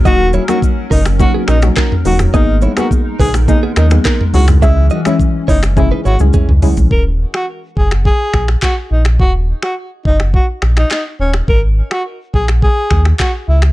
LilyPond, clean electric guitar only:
\new Staff \with { instrumentName = "Clean electric guitar" } { \time 4/4 \key dis \phrygian \tempo 4 = 105 <fis' dis''>16 r16 <e' cis''>16 <cis' ais'>16 r8 <cis' ais'>16 r8 <b gis'>16 <cis' ais'>16 r16 <dis' ais'>8 r8 | <gis' dis''>16 r16 <e' cis''>16 <dis' b'>16 r8 <dis' b'>16 r8 <b gis'>16 <cis' ais'>16 r16 <dis' ais'>8 r8 | <gis' e''>16 r16 <fis' dis''>16 <e' cis''>16 r8 <e' cis''>16 r8 <dis' b'>16 <e' cis''>16 r16 <cis' gis'>8 r8 | r1 |
r1 | r1 | }